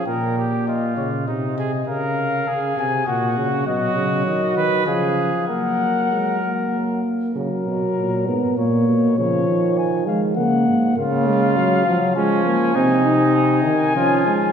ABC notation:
X:1
M:3/4
L:1/8
Q:1/4=100
K:F#
V:1 name="Trumpet"
=g2 d c d2 | e3 g f2 | d2 d2 e2 | f4- f z |
A4 c2 | c2 g e f2 | e4 g2- | g2 g4 |]
V:2 name="Trumpet"
A =G E2 D ^G | A2 G2 F2 | F3 B G2 | A4- A z |
z6 | z6 | E4 C2 | D4 E2 |]
V:3 name="Euphonium" clef=bass
z6 | z6 | F,4 E,2 | A,2 G, A,3 |
F,3 B, A,2 | E,3 G, A,2 | A, G, F, E, G, A, | ^B, D2 z C G, |]
V:4 name="Bass trombone" clef=bass
A,,3 C, ^B,,2 | C,2 C, ^B,, A,, C, | B,, C, D, D, C,2 | F,4- F, z |
C, B,, A,, G,, A,, B,, | C, D,3 C, G,, | C,3 F, E,2 | ^B,,3 D, E,2 |]